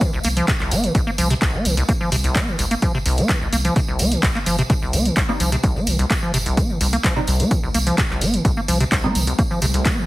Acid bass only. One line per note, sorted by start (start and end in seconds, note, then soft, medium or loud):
0.01 0.11 D#3 medium
0.13 0.19 C2 medium
0.25 0.29 A#3 medium
0.37 0.46 F3 medium
0.48 0.52 C3 loud
0.60 0.73 C2 medium
0.71 0.85 C4 loud
0.84 0.93 D#3 medium
0.95 1.01 C2 medium
1.07 1.11 A#3 medium
1.18 1.28 F3 medium
1.30 1.34 C3 loud
1.42 1.55 C2 medium
1.54 1.67 C4 loud
1.65 1.75 D#3 medium
1.77 1.84 C2 medium
1.89 1.93 A#3 medium
2.01 2.10 F3 medium
2.12 2.16 C3 loud
2.24 2.37 C2 medium
2.35 2.49 C4 loud
2.48 2.57 D#3 medium
2.59 2.66 C2 medium
2.71 2.75 A#3 medium
2.82 2.92 F3 medium
2.95 2.98 C3 loud
3.06 3.20 C2 medium
3.18 3.31 C4 loud
3.29 3.39 D#3 medium
3.41 3.48 C2 medium
3.53 3.57 A#3 medium
3.65 3.74 F3 medium
3.76 3.80 C3 loud
3.88 4.01 C2 medium
4.00 4.13 C4 loud
4.12 4.21 D#3 medium
4.23 4.30 C2 medium
4.35 4.39 A#3 medium
4.46 4.56 F3 medium
4.59 4.62 C3 loud
4.70 4.74 C3 loud
4.82 4.95 C2 medium
4.93 5.07 C4 loud
5.05 5.15 D#3 medium
5.17 5.23 C2 medium
5.29 5.33 A#3 medium
5.40 5.50 F3 medium
5.52 5.56 C3 loud
5.64 5.77 C2 medium
5.76 5.89 C4 loud
5.87 5.97 D#3 medium
5.99 6.05 C2 medium
6.11 6.15 A#3 medium
6.23 6.32 F3 medium
6.34 6.38 C3 loud
6.46 6.59 C2 medium
6.57 6.71 C4 loud
6.70 6.79 D#3 medium
6.81 6.88 C2 medium
6.93 6.97 A#3 medium
7.04 7.14 F3 medium
7.16 7.20 C3 loud
7.28 7.41 C2 medium
7.40 7.53 C4 loud
7.51 7.61 D#3 medium
7.63 7.69 C2 medium
7.75 7.79 A#3 medium
7.87 7.96 F3 medium
7.98 8.02 C3 loud
8.10 8.23 C2 medium
8.21 8.35 C4 loud
8.34 8.43 D#3 medium
8.45 8.52 C2 medium
8.57 8.61 A#3 medium
8.68 8.78 F3 medium
8.80 8.84 C3 loud
8.92 9.05 C2 medium
9.04 9.17 C4 loud
9.15 9.25 D#3 medium
9.27 9.34 C2 medium
9.39 9.43 A#3 medium
9.51 9.60 F3 medium
9.62 9.66 C3 loud
9.74 9.87 C2 medium
9.86 9.99 C4 loud
9.98 10.06 D#3 medium